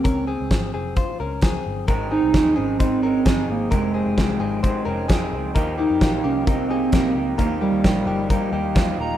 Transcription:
<<
  \new Staff \with { instrumentName = "Clean electric guitar" } { \time 4/4 \key ees \mixolydian \tempo 4 = 131 <des' bes'>8 <c' aes'>4 <c' aes'>8 <f' c''>8 <des' bes'>8 <c' aes'>4 | <ees' bes'>8 <c' aes'>4 <c' aes'>8 <ees' c''>8 <des' bes'>8 <c' aes'>4 | <ees' bes'>8 <c' aes'>4 <c' aes'>8 <ees' c''>8 <des' bes'>8 <c' aes'>4 | <ees' bes'>8 <bes g'>4 <bes g'>8 <ees' bes'>8 <c' aes'>8 <bes g'>4 |
<ees' bes'>8 <bes g'>4 <bes g'>8 <ees' bes'>8 <bes g'>8 <bes f'>4 | }
  \new Staff \with { instrumentName = "Soft synth lead" } { \time 4/4 \key ees \mixolydian c'4. r2 r8 | r8 ees'4 des'8 c'4. bes8 | aes2. r4 | r8 ees'4 des'8 c'2 |
bes8 g2. bes''8 | }
  \new Staff \with { instrumentName = "Clean electric guitar" } { \time 4/4 \key ees \mixolydian r1 | <aes, ees aes c' ees'>4 <aes, ees aes c' ees'>4 <ees aes c' ees'>8 <aes c' ees'>8 <aes, ees aes c' ees'>8 <aes c' ees'>8 | <f, c ees aes c'>4 <f, c ees aes c'>4 <c ees aes c'>8 <ees aes c'>8 <f, c ees aes c'>8 <ees aes c'>8 | <ees f bes ees' g'>4 <ees f bes ees' g'>4 <f bes ees' g'>8 <bes ees' g'>8 <ees f bes ees' g'>8 <bes ees' g'>8 |
<ees f bes ees' g'>4 <ees f bes ees' g'>4 <f bes ees' g'>8 <bes ees' g'>8 <ees f bes ees' g'>8 <bes ees' g'>8 | }
  \new Staff \with { instrumentName = "Picked electric bass" } { \clef bass \time 4/4 \key ees \mixolydian des,8. des,16 aes,,8 f,,8. r16 des,4 g,,8 | aes,,8. c,16 ees,8 aes,,4. g,,8 aes,,8 | f,,8. f,,16 c,8 aes,,8. r16 f,,4 des,8 | ees,8. f,16 bes,,8 c,4. bes,,8 des,8 |
ees,8. ees,16 bes,,8 g,,8. r16 ees,4 ees,,8 | }
  \new DrumStaff \with { instrumentName = "Drums" } \drummode { \time 4/4 <hh bd>4 <hh bd sn>4 <hh bd>4 <hh bd sn>4 | <hh bd>4 <hh bd sn>4 <hh bd>4 <hh bd sn>4 | <hh bd>4 <hh bd sn>4 <hh bd>4 <hh bd sn>4 | <hh bd>4 <hh bd sn>4 <hh bd>4 <hh bd sn>4 |
<hh bd>4 <hh bd sn>4 <hh bd>4 <hh bd sn>4 | }
>>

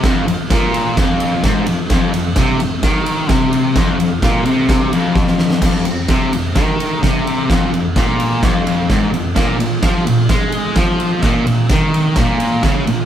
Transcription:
<<
  \new Staff \with { instrumentName = "Distorted electric guitar" } { \clef bass \time 4/4 \key bes \major \tempo 4 = 128 f,8 f,8 bes,4 f,4 aes,8 f,8 | f,8 f,8 c8 f,8 ees4 c4 | f,8 f,8 bes,8 c4 f,4. | f,8 f,8 c8 f,8 ees4 c4 |
f,8 f,8 bes,4 f,4 aes,8 f,8 | bes,8 bes,8 f8 bes,8 aes4 f4 | bes,8 bes,8 ees4 bes,4 des8 bes,8 | }
  \new DrumStaff \with { instrumentName = "Drums" } \drummode { \time 4/4 <bd cymr sn>8 cymr8 <bd cymr sn>8 cymr8 <bd cymr sn>8 cymr8 <bd cymr sn>8 cymr8 | <bd cymr sn>8 cymr8 <bd cymr sn>8 cymr8 <bd cymr sn>8 cymr8 <bd cymr sn>8 cymr8 | <bd cymr sn>8 cymr8 <bd cymr sn>8 cymr8 <bd cymr sn>8 cymr8 <bd sn>16 sn16 sn16 sn16 | <cymc bd sn>8 cymr8 <bd cymr sn>8 cymr8 <bd cymr sn>8 cymr8 <bd cymr sn>8 cymr8 |
<bd cymr sn>8 cymr8 <bd cymr sn>8 cymr8 <bd cymr sn>8 cymr8 <bd cymr sn>8 cymr8 | <bd cymr sn>8 cymr8 <bd cymr sn>8 cymr8 <bd cymr sn>8 cymr8 <bd cymr sn>8 cymr8 | <bd cymr sn>8 cymr8 <bd cymr sn>8 cymr8 <bd cymr sn>8 cymr8 <bd cymr sn>8 cymr8 | }
>>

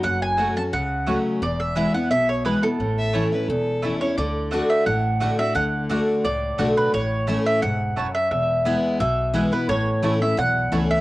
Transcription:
<<
  \new Staff \with { instrumentName = "Mandolin" } { \time 4/4 \key a \major \tempo 4 = 174 fis''8 gis''4 a''8 fis''4. r8 | d''8 e''8 e''8 fis''8 e''8 cis''8 b'8 a'8~ | a'2. r8 cis''8 | d''4. e''8 fis''4. e''8 |
fis''2 d''4. b'8 | cis''4. e''8 fis''4. e''8 | e''2 e''4. b'8 | cis''4. e''8 fis''4. e''8 | }
  \new Staff \with { instrumentName = "Fiddle" } { \time 4/4 \key a \major r1 | r1 | r8 e''8 cis''8 b'8 a'2 | r1 |
r1 | r1 | r1 | r1 | }
  \new Staff \with { instrumentName = "Mandolin" } { \time 4/4 \key a \major r4 <a fis' cis'' fis''>16 r4. r16 <a fis' cis'' fis''>16 r8. | r4 <b e' b' gis''>16 r4. r16 <b e' b' gis''>16 r8. | r4 <a e' cis'' a''>16 r4. r16 <a e' cis'' a''>16 r8. | r4 <a fis' d'' fis''>16 r4. r16 <a fis' d'' fis''>16 r8. |
r4 <a fis' d'' fis''>16 r4. r16 <a fis' d'' fis''>16 r8. | r4 <a e' cis'' a''>16 r4. r16 <a e' cis'' a''>16 r8. | r4 <b e' b' gis''>16 r4. r16 <b e' b' gis''>16 r8. | r4 <a e' cis'' a''>16 r4. r16 <a e' cis'' a''>16 r8. | }
  \new Staff \with { instrumentName = "Steel-string acoustic guitar" } { \time 4/4 \key a \major << { r4 <fis a cis' fis'>8 <cis' fis'>8 r4 <fis a cis' fis'>4 | r4 <e gis b e'>8 <b e'>8 r4 <e gis b e'>8 <b e'>8 | r4 <e a cis' e'>8 <cis' e'>8 r4 <e a cis' e'>8 <cis' e'>8 | r4 <d a d' fis'>4 r4 <d a d' fis'>8 <d' fis'>8 |
r4 <d a d' fis'>4 r4 <d a d' fis'>4 | r4 <e a cis' e'>4 r2 | r4 <e gis b e'>4 r4 <e gis b e'>8 <b e'>8 | r4 <e a cis' e'>8 <cis' e'>8 r4 <e a cis' e'>4 | } \\ { fis,2 cis2 | e,2 b,2 | a,2 e,2 | d2 a,2 |
d2 a,2 | a,2 gis,4 fis,4 | e,2 b,2 | a,2 e,2 | } >> }
  \new Staff \with { instrumentName = "Upright bass" } { \clef bass \time 4/4 \key a \major fis,,2 cis,2 | e,,2 b,,2 | a,,2 e,,2 | d,2 a,,2 |
d,2 cis,4 b,,4 | a,,2 e,,2 | e,,2 b,,2 | a,,4 a,,4 b,,4 cis,4 | }
>>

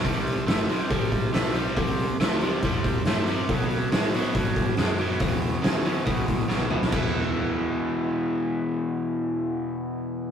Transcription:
<<
  \new Staff \with { instrumentName = "Overdriven electric guitar" } { \clef bass \time 4/4 \key e \minor \tempo 4 = 140 <c g>4 <c a>8 <c g>8 <c g>4 <c a>8 <c g>8 | <c g>4 <c a>8 <c g>8 <c g>4 <c a>8 <c g>8 | <b, fis>4 <b, gis>8 <b, fis>8 <b, fis>4 <b, gis>8 <b, fis>8 | <e, b,>4 <e, cis>8 <e, b,>8 <e, b,>4 <e, cis>8 <e, b,>8 |
<e, b, e>1~ | <e, b, e>1 | }
  \new Staff \with { instrumentName = "Picked electric bass" } { \clef bass \time 4/4 \key e \minor c,4 g,,8 r8 a,,4 b,,4 | c,4 d,4 e,4 g,4 | b,4 a,4 g,4 fis,4 | e,4 d,4 c,4 b,,4 |
e,,1~ | e,,1 | }
  \new DrumStaff \with { instrumentName = "Drums" } \drummode { \time 4/4 <hho bd>8 hho8 <hho sn>8 hho8 <hho bd>8 <hho bd>8 <hho sn>8 hho8 | <hho bd>8 hho8 <hho sn>8 hho8 <hho bd>8 <hho bd>8 <hho sn>8 hho8 | <hho bd>8 hho8 <hho sn>8 hho8 <hho bd>8 <hho bd>8 <hho sn>8 hho8 | <hho bd>8 hho8 <hho sn>8 hho8 <hho bd>8 <hho bd>8 sn8 toml16 sn16 |
<cymc bd>4 r4 r4 r4 | r4 r4 r4 r4 | }
>>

